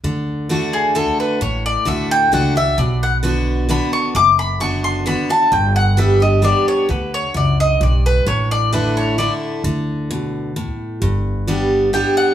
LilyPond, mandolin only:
\new Staff \with { instrumentName = "Mandolin" } { \time 3/4 \key d \major \tempo 4 = 131 r4. gis'8 a'8 b'8 | cis''8 d''8 e''8 g''8 fis''8 e''8 | d''8 fis''8 r4 b''8 cis'''8 | d'''8 b''8 cis'''8 c'''8 b''8 a''8 |
g''8 fis''8 e''8 ees''8 d''8 cis''8 | b'8 cis''8 d''8 ees''8 d''8 b'8 | cis''8 d''8 b'8 cis''8 d''8 r8 | r2. |
r2 g''8 fis''8 | }